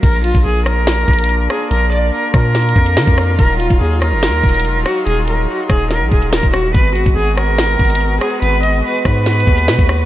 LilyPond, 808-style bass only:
\new Staff \with { instrumentName = "808-style bass" } { \clef bass \time 4/4 \key bes \phrygian \tempo 4 = 143 bes,,8. bes,,16 bes,,4. bes,,4 r8 | bes,,4 r8 bes,4 f,8 d16 f,8. | ees,,8. ees,,16 ees,8. ges,,16. ees,16. ees,,8 f,,16 ees,,16 r8 | ees,,4 r8 ees,,8. bes,,16 ees,,8. ees,,8. |
aes,,8. aes,,16 aes,,4. aes,,4 r8 | aes,,4 r8 aes,4 ees,8 ces16 ees,8. | }